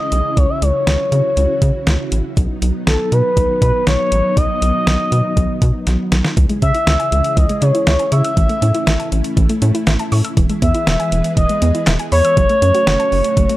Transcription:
Already playing: string machine C#3 C#4 E4 G#4, analog synth lead D#5
0.12 analog synth bass B1, closed hi-hat
0.37 analog synth bass C#2, string machine F#4, analog synth lead C#5, kick, closed hi-hat
0.49 analog synth lead E5
0.62 analog synth bass C#2, analog synth lead C#5, closed hi-hat
0.87 analog synth bass C#2, snare, closed hi-hat
1.12 analog synth bass C#3, closed hi-hat
1.37 analog synth bass C#2, closed hi-hat
1.62 analog synth bass C#3, kick, closed hi-hat
1.87 analog synth bass C#2, snare, closed hi-hat
2.12 analog synth bass A1, closed hi-hat
2.37 analog synth bass B1, string machine F#3 B3 D#4, kick, closed hi-hat
2.62 analog synth bass B1, closed hi-hat
2.87 analog synth bass B1, analog synth lead A4, snare, closed hi-hat
3.12 analog synth bass B2, analog synth lead B4, closed hi-hat
3.37 analog synth bass B1, kick, closed hi-hat
3.62 analog synth bass B2, analog synth lead B4, kick, closed hi-hat
3.87 analog synth bass B1, analog synth lead C#5, snare, closed hi-hat
4.12 analog synth bass A1, closed hi-hat
4.37 analog synth bass B1, analog synth lead D#5, kick, closed hi-hat
4.62 analog synth bass B1, closed hi-hat
4.87 analog synth bass B1, snare, closed hi-hat
5.12 analog synth bass B2, closed hi-hat
5.37 analog synth bass B1, kick, closed hi-hat
5.62 analog synth bass B2, kick, closed hi-hat
5.87 analog synth bass B1, snare, closed hi-hat
6.12 analog synth bass B1, snare, closed hi-hat
6.25 snare
6.37 analog synth bass C#2, string machine C#3 C#4 E4 G#4, synth arpeggio sound E3, kick, closed hi-hat
6.49 synth arpeggio sound G#3, closed hi-hat
6.62 analog synth bass C#3, synth arpeggio sound C#4, analog synth lead E5, kick, closed hi-hat
6.75 synth arpeggio sound E4, closed hi-hat
6.87 analog synth bass C#2, synth arpeggio sound E5, snare, closed hi-hat
7.00 synth arpeggio sound G#5, closed hi-hat
7.12 analog synth bass C#2, closed hi-hat
7.24 closed hi-hat
7.37 analog synth bass C#2, synth arpeggio sound E3, analog synth lead D#5, kick, closed hi-hat
7.49 synth arpeggio sound G#3, closed hi-hat
7.62 analog synth bass C#3, synth arpeggio sound C#4, analog synth lead C#5, closed hi-hat
7.75 synth arpeggio sound E4, closed hi-hat
7.87 analog synth bass C#2, analog synth lead C#5, synth arpeggio sound E5, snare, closed hi-hat
7.99 synth arpeggio sound G#5, closed hi-hat
8.12 analog synth bass C#3, analog synth lead E5, synth arpeggio sound C#6, closed hi-hat
8.24 synth arpeggio sound E6, closed hi-hat
8.37 analog synth bass A1, synth arpeggio sound E3, string machine A3, kick, closed hi-hat
8.49 synth arpeggio sound A3, closed hi-hat
8.62 analog synth bass A2, synth arpeggio sound C#4, closed hi-hat
8.74 synth arpeggio sound E4, closed hi-hat
8.87 analog synth bass A1, synth arpeggio sound E5, snare, closed hi-hat
8.99 synth arpeggio sound A5, closed hi-hat
9.12 analog synth bass A1, closed hi-hat
9.24 closed hi-hat
9.37 analog synth bass A1, synth arpeggio sound E3, kick, closed hi-hat
9.49 synth arpeggio sound A3, closed hi-hat
9.62 analog synth bass A2, synth arpeggio sound C#4, closed hi-hat
9.75 synth arpeggio sound E4, closed hi-hat
9.87 analog synth bass A1, synth arpeggio sound E5, snare, closed hi-hat
9.99 synth arpeggio sound A5, closed hi-hat
10.12 analog synth bass A2, synth arpeggio sound C#6, open hi-hat
10.24 synth arpeggio sound E6, closed hi-hat
10.37 analog synth bass E1, synth arpeggio sound E3, string machine E3 G#4 B4, kick, closed hi-hat
10.49 synth arpeggio sound G#3, closed hi-hat
10.62 analog synth bass E2, synth arpeggio sound B3, analog synth lead E5, kick, closed hi-hat
10.74 synth arpeggio sound E4, closed hi-hat
10.87 analog synth bass E1, synth arpeggio sound E5, snare, closed hi-hat
11.00 synth arpeggio sound G#5, closed hi-hat
11.12 analog synth bass E1, closed hi-hat
11.24 closed hi-hat
11.37 analog synth bass E1, synth arpeggio sound E3, analog synth lead D#5, kick, closed hi-hat
11.49 synth arpeggio sound G#3, closed hi-hat
11.62 analog synth bass E2, synth arpeggio sound B3, closed hi-hat
11.75 synth arpeggio sound E4, closed hi-hat
11.87 analog synth bass E1, synth arpeggio sound E5, snare, clap, closed hi-hat
11.99 synth arpeggio sound G#5, closed hi-hat
12.12 analog synth bass E2, analog synth lead C#5, synth arpeggio sound B5, open hi-hat
12.25 synth arpeggio sound E6, closed hi-hat
12.37 analog synth bass F#1, synth arpeggio sound F#3, string machine A3 C#4 F#4, kick, closed hi-hat
12.49 synth arpeggio sound A3, closed hi-hat
12.62 analog synth bass F#2, synth arpeggio sound C#4, closed hi-hat
12.75 synth arpeggio sound F#4, closed hi-hat
12.87 analog synth bass F#1, synth arpeggio sound F#5, snare, closed hi-hat
13.00 synth arpeggio sound A5, closed hi-hat
13.12 analog synth bass F#1, open hi-hat
13.24 closed hi-hat
13.37 analog synth bass F#1, synth arpeggio sound F#3, kick, closed hi-hat
13.49 synth arpeggio sound A3, closed hi-hat

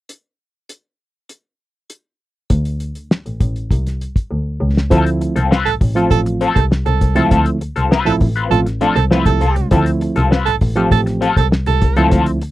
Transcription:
0.09 closed hi-hat
0.69 closed hi-hat
1.29 closed hi-hat
1.90 closed hi-hat
2.50 double bass D2, kick, closed hi-hat
2.65 closed hi-hat
2.80 closed hi-hat
2.95 closed hi-hat
3.11 snare
3.26 double bass A1, closed hi-hat
3.40 double bass A1, kick, closed hi-hat
3.56 closed hi-hat
3.71 double bass C2, kick, closed hi-hat
3.87 snare, closed hi-hat
4.01 closed hi-hat
4.16 kick, closed hi-hat
4.30 double bass D2
4.60 double bass C#2
4.77 snare
4.90 double bass D2, reed electric piano F3 A3 C4 E4, clean electric guitar C4 F4 A4, kick, closed hi-hat
5.06 muted clean electric guitar stroke, closed hi-hat
5.21 muted clean electric guitar stroke, closed hi-hat
5.35 double bass C2, clean electric guitar C4 F4 A4, closed hi-hat
5.51 clean electric guitar C4 F4 B4, snare
5.65 double bass A1, tenor saxophone A4, closed hi-hat
5.81 double bass A1, muted clean electric guitar stroke, kick, open hi-hat
5.95 reed electric piano F3 A3 C4 F4, clean electric guitar C4 F4 A4, closed hi-hat
6.11 double bass A1, tenor saxophone A4, muted clean electric guitar stroke, kick, closed hi-hat
6.26 muted clean electric guitar stroke, closed hi-hat
6.41 clean electric guitar C4 F4 A4, closed hi-hat
6.55 double bass C2, tenor saxophone A4, muted clean electric guitar stroke, kick, closed hi-hat
6.71 muted clean electric guitar stroke, snare
6.86 double bass C2, tenor saxophone A4, muted clean electric guitar stroke, closed hi-hat
7.01 double bass C2, kick, closed hi-hat
7.15 double bass C#2, reed electric piano F3 A3 C4 E4, clean electric guitar C4 F4 A4, closed hi-hat
7.31 double bass D2, clean electric guitar C4 F4 A4, kick, closed hi-hat
7.46 muted clean electric guitar stroke, closed hi-hat
7.61 muted clean electric guitar stroke, closed hi-hat
7.76 double bass C2, clean electric guitar C4 F4 A4, closed hi-hat
7.91 clean electric guitar C4 F4 B4, snare
8.05 double bass A1, reed electric piano F3 A3 C4 E4, tenor saxophone A4, closed hi-hat
8.21 double bass A1, muted clean electric guitar stroke, kick, open hi-hat
8.36 clean electric guitar C4 F4 B4, closed hi-hat
8.50 double bass A1, reed electric piano F3 A3 C4 F4, tenor saxophone A4, muted clean electric guitar stroke, closed hi-hat
8.66 muted clean electric guitar stroke, snare, closed hi-hat
8.81 reed electric piano F3 A3 C4 D4, clean electric guitar C4 F4 A4, closed hi-hat
8.95 double bass C2, tenor saxophone A4, muted clean electric guitar stroke, closed hi-hat
9.11 reed electric piano F3 A3 C4 E4, clean electric guitar C4 F4 B4, snare
9.26 double bass C2, tenor saxophone A4, muted clean electric guitar stroke, kick, closed hi-hat
9.41 double bass C2, clean electric guitar C4 F4 A4, closed hi-hat
9.56 double bass C#2, muted clean electric guitar stroke, closed hi-hat
9.71 double bass D2, reed electric piano F3 A3 C4 E4, clean electric guitar C4 F4 A4, kick, closed hi-hat
9.86 muted clean electric guitar stroke, closed hi-hat
10.01 muted clean electric guitar stroke, closed hi-hat
10.16 double bass C2, clean electric guitar C4 F4 A4, closed hi-hat
10.31 clean electric guitar C4 F4 B4, snare
10.46 double bass A1, tenor saxophone A4, closed hi-hat
10.61 double bass A1, muted clean electric guitar stroke, kick, open hi-hat
10.76 reed electric piano F3 A3 C4 G4, clean electric guitar C4 F4 A4, closed hi-hat
10.91 double bass A1, tenor saxophone A4, kick, closed hi-hat
11.06 muted clean electric guitar stroke, snare, closed hi-hat
11.21 clean electric guitar C4 F4 A4, closed hi-hat
11.36 double bass C2, tenor saxophone A4, muted clean electric guitar stroke, kick, closed hi-hat
11.52 muted clean electric guitar stroke, snare
11.66 double bass C2, tenor saxophone A4, muted clean electric guitar stroke, closed hi-hat
11.81 double bass C2, kick, closed hi-hat
11.96 double bass C#2, reed electric piano F3 A3 C4 E4, clean electric guitar C4 F4 A4, closed hi-hat
12.11 double bass D2, clean electric guitar C4 F4 A4, kick, closed hi-hat
12.26 muted clean electric guitar stroke, closed hi-hat
12.41 muted clean electric guitar stroke, closed hi-hat

